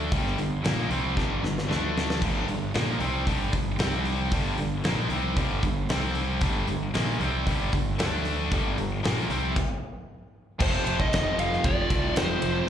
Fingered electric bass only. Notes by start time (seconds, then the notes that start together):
0.12 G1
0.39 G1
0.64 A#1
0.91 C2
1.17 G1
1.43 G1
1.70 D2
2.22 G1
2.49 G1
2.75 A#1
3.01 C2
3.27 G1
3.53 G1
3.80 C2
4.31 G1
4.58 G1
4.84 A#1
5.10 C2
5.37 G1
5.63 G1
5.90 C2
6.42 G1
6.69 G1
6.95 A#1
7.21 C2
7.47 G1
7.73 G1
8.00 D2
8.52 G1
8.79 G1
9.05 A#1
9.30 C2
10.60 F1
10.86 F1
11.12 F1
11.38 F1
11.64 F1
11.90 C2
12.17 F1
12.42 F1